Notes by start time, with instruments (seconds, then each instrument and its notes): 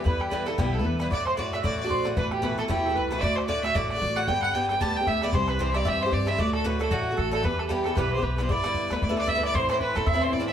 0.04 upright bass E2, bouzouki G2 D3 B3 E4, fiddle B4, mandolin B4, bodhran
0.19 mandolin G4, fiddle G4, bodhran
0.30 bouzouki G2 D3 B3 E4, mandolin B4, fiddle B4, bodhran
0.46 bouzouki G2 D3 B3 E4, mandolin A4, fiddle A4, bodhran
0.58 upright bass B1, bouzouki G2 D3 B3 E4, mandolin G4, fiddle G4, bodhran
0.73 fiddle A4, mandolin A4
0.79 bouzouki D3 B3 E4
0.84 upright bass E2, mandolin B4, fiddle B4, bodhran
0.99 bouzouki G2 D3 B3 E4, mandolin B4, fiddle B4, bodhran
1.11 upright bass F#2, bouzouki A2 D3 A3 F#4, mandolin D5, fiddle D5, bodhran
1.26 mandolin C5, fiddle C5, bodhran
1.37 bouzouki A2 D3 A3 F#4, mandolin D5, fiddle D5, bodhran
1.53 bouzouki A2 D3 A3 F#4, mandolin E5, fiddle E5, bodhran
1.63 upright bass A1, bouzouki A2 D3 A3 F#4, mandolin D5, fiddle D5, bodhran
1.78 mandolin D5, fiddle D5
1.84 bouzouki D3 A3 F#4
1.90 upright bass A#1, mandolin C5, bodhran
2.05 bouzouki A2 D3 A3 F#4, bodhran
2.17 upright bass A1, bouzouki B2 E3 A3 E4, fiddle B4, mandolin B4, bodhran
2.31 mandolin G4, fiddle G4, bodhran
2.42 bouzouki B2 E3 A3 E4, mandolin B4, fiddle B4, bodhran
2.55 bouzouki B2 E3, mandolin B4, bodhran
2.59 bouzouki A3 E4, mandolin A4, fiddle A4
2.68 upright bass E2, bouzouki B2 E3 A3 E4, fiddle G4, mandolin G4, bodhran
2.86 bouzouki E4, mandolin A4
2.90 bouzouki E3 A3
2.95 upright bass C2, fiddle B4, mandolin B4, bodhran
3.10 bouzouki B2 E3 A3 E4, fiddle B4, mandolin B4, bodhran
3.18 bouzouki A2 D3, fiddle D5 E5
3.22 upright bass D2, bouzouki A3 F#4, mandolin D5, bodhran
3.36 fiddle C5, bodhran
3.47 bouzouki A2 D3 A3 F#4, fiddle D5, mandolin D5, bodhran
3.63 bouzouki A2 D3 A3 F#4, fiddle E5, mandolin E5, bodhran
3.75 upright bass A1, bouzouki A2 D3 A3 F#4, fiddle D5, mandolin D5, bodhran
3.90 fiddle D5, mandolin D5, bodhran
3.95 bouzouki D3 A3 F#4
4.01 upright bass A1, bodhran
4.16 bouzouki A2 D3 A3 F#4, fiddle F#5, mandolin F#5, bodhran
4.27 upright bass G1, bouzouki G2 D3 B3 G4, fiddle G5, mandolin G5, bodhran
4.42 fiddle F#5, mandolin F#5, bodhran
4.53 bouzouki G2 D3 B3 G4, fiddle G5, mandolin G5, bodhran
4.69 bouzouki G2 D3 B3 G4, fiddle G5, bodhran
4.80 upright bass D2, bouzouki G2 D3 B3 G4, fiddle A5, mandolin A5, bodhran
4.96 mandolin G5, fiddle G5
5.00 bouzouki D3 B3 G4
5.07 upright bass D2, mandolin E5, fiddle E5, bodhran
5.22 bouzouki G2 D3 B3 G4, mandolin D5, fiddle D5, bodhran
5.30 upright bass C2, bouzouki G2 E3, mandolin C5, fiddle D5, bodhran
5.34 bouzouki C4 G4, fiddle C5
5.48 mandolin B4, fiddle B4, bodhran
5.59 bouzouki G2 E3 C4 G4, mandolin C5, fiddle C5, bodhran
5.73 bouzouki G2 E3 C4 G4, mandolin D5, fiddle D5 E5, bodhran
5.85 bouzouki G2 E3 C4 G4, upright bass G2, mandolin E5, fiddle E5, bodhran
6.01 mandolin C5, fiddle C5
6.06 bouzouki E3 C4 G4
6.11 upright bass G2, mandolin D5, fiddle D5, bodhran
6.26 bouzouki G2 E3 C4 G4, mandolin E5, fiddle E5, bodhran
6.38 upright bass D2, bouzouki A2 D3 A3 F#4, mandolin D5, fiddle D5, bodhran
6.53 mandolin A4, fiddle A4, bodhran
6.64 bouzouki A2 D3 A3 F#4, mandolin B4, fiddle B4, bodhran
6.79 bouzouki A2 D3 A3 F#4, mandolin A4, fiddle A4, bodhran
6.90 upright bass A1, bouzouki A2 D3 A3 F#4, mandolin F#4, fiddle F#4, bodhran
7.11 bouzouki D3 A3 F#4
7.17 upright bass A1, mandolin A4, fiddle A4, bodhran
7.31 bouzouki A2 D3 A3 F#4, mandolin A4, fiddle A4, bodhran
7.43 upright bass E2, bouzouki G2 E3 B3 G4, mandolin B4, fiddle B4, bodhran
7.59 fiddle A4, bodhran
7.67 bouzouki G2 E3, mandolin G4, fiddle A4, bodhran
7.71 bouzouki B3 G4, fiddle G4
7.84 bouzouki G2 E3 B3, mandolin A4, fiddle A4, bodhran
7.88 bouzouki G4
7.95 upright bass B1, bouzouki G2 E3 B3 G4, mandolin B4, fiddle B4, bodhran
8.11 fiddle C5, bodhran
8.18 bouzouki E3 B3 G4
8.22 upright bass B1, mandolin B4, fiddle B4, bodhran
8.36 bouzouki G2 E3 B3, mandolin B4, fiddle B4, bodhran
8.41 bouzouki G4, fiddle C5
8.49 upright bass G1, bouzouki G2 D3 B3 E4, mandolin D5, fiddle D5, bodhran
8.64 bouzouki G2 D3 B3 E4, bodhran
8.74 bodhran
8.90 upright bass D2, bouzouki G2 D3 B3 E4, mandolin B4, fiddle B4, bodhran
8.96 bodhran
9.02 upright bass D2, mandolin D5, fiddle D5, bodhran
9.09 bouzouki G2 D3 B3 E4
9.17 mandolin D5, fiddle D5, bodhran
9.27 mandolin E5, fiddle E5, bodhran
9.35 bouzouki G2 D3 B3 E4
9.43 mandolin D5, fiddle D5, bodhran
9.54 upright bass A1, bouzouki A2 E3 C4 E4, mandolin C5, fiddle C5, bodhran
9.69 bouzouki A2 E3 C4 E4, mandolin C5, fiddle C5, bodhran
9.80 fiddle B4, mandolin B4, bodhran
9.95 upright bass E2, bouzouki A2 E3 C4 E4, fiddle A4, mandolin A4, bodhran
10.01 bodhran
10.06 upright bass E2, mandolin E5, fiddle E5, bodhran
10.14 bouzouki A2 E3 C4 E4
10.21 mandolin C5, fiddle C5, bodhran
10.33 fiddle D5, mandolin D5, bodhran
10.40 bouzouki A2 E3 C4 E4
10.48 fiddle E5, mandolin E5, bodhran